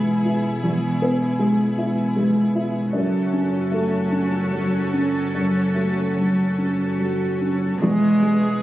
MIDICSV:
0, 0, Header, 1, 6, 480
1, 0, Start_track
1, 0, Key_signature, 4, "major"
1, 0, Tempo, 773196
1, 390, Time_signature, 6, 3, 24, 8
1, 2312, Tempo, 816327
1, 5194, End_track
2, 0, Start_track
2, 0, Title_t, "Viola"
2, 0, Program_c, 0, 41
2, 4724, Note_on_c, 0, 68, 58
2, 5194, Note_off_c, 0, 68, 0
2, 5194, End_track
3, 0, Start_track
3, 0, Title_t, "String section"
3, 0, Program_c, 1, 48
3, 0, Note_on_c, 1, 59, 31
3, 0, Note_on_c, 1, 64, 30
3, 0, Note_on_c, 1, 68, 30
3, 1797, Note_off_c, 1, 59, 0
3, 1798, Note_off_c, 1, 64, 0
3, 1801, Note_off_c, 1, 68, 0
3, 1821, Note_on_c, 1, 61, 46
3, 1821, Note_on_c, 1, 66, 47
3, 1823, Note_on_c, 1, 69, 45
3, 4722, Note_off_c, 1, 61, 0
3, 4722, Note_off_c, 1, 66, 0
3, 4722, Note_on_c, 1, 59, 47
3, 4722, Note_on_c, 1, 68, 47
3, 4723, Note_off_c, 1, 69, 0
3, 4724, Note_on_c, 1, 52, 48
3, 5194, Note_off_c, 1, 52, 0
3, 5194, Note_off_c, 1, 59, 0
3, 5194, Note_off_c, 1, 68, 0
3, 5194, End_track
4, 0, Start_track
4, 0, Title_t, "Upright piano"
4, 0, Program_c, 2, 0
4, 0, Control_c, 2, 64, 127
4, 0, Note_on_c, 2, 40, 30
4, 0, Note_on_c, 2, 56, 25
4, 0, Note_on_c, 2, 59, 26
4, 0, Note_on_c, 2, 64, 29
4, 156, Note_off_c, 2, 64, 0
4, 156, Note_on_c, 2, 64, 30
4, 296, Note_off_c, 2, 56, 0
4, 365, Note_off_c, 2, 40, 0
4, 393, Note_on_c, 2, 40, 39
4, 402, Control_c, 2, 64, 0
4, 405, Note_off_c, 2, 59, 0
4, 517, Control_c, 2, 64, 127
4, 535, Note_off_c, 2, 64, 0
4, 634, Note_on_c, 2, 59, 34
4, 864, Note_on_c, 2, 56, 34
4, 1008, Note_off_c, 2, 59, 0
4, 1103, Note_on_c, 2, 64, 39
4, 1242, Note_off_c, 2, 56, 0
4, 1341, Note_on_c, 2, 56, 37
4, 1484, Note_off_c, 2, 64, 0
4, 1583, Note_on_c, 2, 64, 39
4, 1726, Note_off_c, 2, 56, 0
4, 1798, Note_off_c, 2, 40, 0
4, 1818, Note_on_c, 2, 42, 46
4, 1824, Note_off_c, 2, 64, 0
4, 1835, Control_c, 2, 64, 0
4, 1939, Control_c, 2, 64, 127
4, 2069, Note_on_c, 2, 61, 37
4, 2306, Note_on_c, 2, 57, 37
4, 2452, Note_off_c, 2, 61, 0
4, 2544, Note_on_c, 2, 61, 35
4, 2685, Note_off_c, 2, 57, 0
4, 2776, Note_on_c, 2, 54, 31
4, 2926, Note_off_c, 2, 61, 0
4, 3023, Note_on_c, 2, 61, 29
4, 3165, Note_off_c, 2, 54, 0
4, 3240, Note_off_c, 2, 42, 0
4, 3265, Note_on_c, 2, 42, 31
4, 3276, Control_c, 2, 64, 0
4, 3386, Control_c, 2, 64, 127
4, 3411, Note_off_c, 2, 61, 0
4, 3500, Note_on_c, 2, 57, 25
4, 3746, Note_on_c, 2, 54, 23
4, 3893, Note_off_c, 2, 57, 0
4, 3992, Note_on_c, 2, 61, 24
4, 4139, Note_off_c, 2, 54, 0
4, 4237, Note_on_c, 2, 54, 23
4, 4383, Note_off_c, 2, 61, 0
4, 4481, Note_on_c, 2, 61, 25
4, 4626, Note_off_c, 2, 54, 0
4, 4699, Note_off_c, 2, 42, 0
4, 4720, Note_on_c, 2, 40, 47
4, 4722, Note_off_c, 2, 61, 0
4, 4733, Control_c, 2, 64, 0
4, 4845, Control_c, 2, 64, 127
4, 4959, Note_on_c, 2, 56, 37
4, 5194, Note_off_c, 2, 40, 0
4, 5194, Note_off_c, 2, 56, 0
4, 5194, End_track
5, 0, Start_track
5, 0, Title_t, "Cello"
5, 0, Program_c, 3, 42
5, 4722, Note_on_c, 3, 56, 70
5, 5194, Note_off_c, 3, 56, 0
5, 5194, End_track
6, 0, Start_track
6, 0, Title_t, "Double bass"
6, 0, Program_c, 4, 43
6, 0, Note_on_c, 4, 28, 32
6, 1823, Note_on_c, 4, 30, 46
6, 1832, Note_off_c, 4, 28, 0
6, 4723, Note_off_c, 4, 30, 0
6, 4726, Note_on_c, 4, 28, 47
6, 5194, Note_off_c, 4, 28, 0
6, 5194, End_track
0, 0, End_of_file